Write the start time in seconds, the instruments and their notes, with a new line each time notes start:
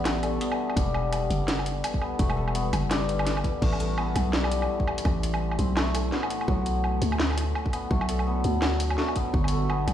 Already playing: 808-style bass A1, santur G3 B3 A4, ambient pad B3 G4 D5
0.05 santur A3, snare, closed hi-hat, low woodblock
0.23 santur A4, closed hi-hat, low woodblock
0.40 santur B3, closed hi-hat
0.52 low woodblock
0.70 low woodblock
0.76 808-style bass E1, ambient pad G3 E4 B4, santur G3, kick, closed hi-hat
0.94 low woodblock
1.13 closed hi-hat, low woodblock
1.30 808-style bass F#1, closed hi-hat
1.48 snare, closed hi-hat
1.59 low woodblock
1.66 closed hi-hat
1.84 closed hi-hat, low woodblock
1.94 kick
2.01 santur B3, low woodblock
2.19 808-style bass E1, santur A3, kick, closed hi-hat
2.30 low woodblock
2.37 santur A4
2.48 low woodblock
2.55 santur B3, closed hi-hat
2.73 808-style bass F#1, closed hi-hat, low woodblock
2.90 santur G3, snare, closed hi-hat, low woodblock
3.09 808-style bass G1, closed hi-hat
3.19 low woodblock
3.27 snare, closed hi-hat
3.37 low woodblock
3.44 kick, closed hi-hat
3.62 808-style bass A1, ambient pad A3 E4 C6, santur A3, kick, crash
3.73 low woodblock
3.80 santur A4, closed hi-hat
3.98 santur B3, low woodblock
4.16 808-style bass B1, closed hi-hat, low woodblock
4.33 santur G3, snare
4.44 low woodblock
4.52 closed hi-hat
4.62 low woodblock
4.80 kick
4.88 low woodblock
4.98 closed hi-hat
5.05 808-style bass A1, kick, low woodblock
5.23 closed hi-hat
5.34 low woodblock
5.52 low woodblock
5.59 808-style bass B1, santur C4, closed hi-hat
5.76 santur A3, snare, low woodblock
5.94 santur A4, closed hi-hat, low woodblock
6.12 santur B3, snare
6.23 low woodblock
6.30 closed hi-hat
6.41 low woodblock
6.48 808-style bass B1, santur F#3, ambient pad B3 F#4 D5, kick
6.66 closed hi-hat
6.84 low woodblock
7.02 808-style bass D2, closed hi-hat
7.12 low woodblock
7.20 snare
7.30 low woodblock
7.35 closed hi-hat, low woodblock
7.38 low woodblock
7.41 low woodblock
7.43 low woodblock
7.55 low woodblock
7.66 kick
7.73 santur B3, closed hi-hat, low woodblock
7.91 808-style bass B1, santur A3, kick
8.01 low woodblock
8.09 santur A4, closed hi-hat
8.19 low woodblock
8.27 santur B3
8.44 808-style bass D2, closed hi-hat
8.62 santur F#3, snare, low woodblock
8.80 closed hi-hat
8.90 low woodblock
8.98 santur A3, snare
9.08 low woodblock
9.16 santur B3, kick, closed hi-hat
9.34 808-style bass G1, santur A3, ambient pad G4, kick
9.44 closed hi-hat, low woodblock
9.52 santur A4
9.70 santur B3, low woodblock
9.87 808-style bass A1, closed hi-hat, low woodblock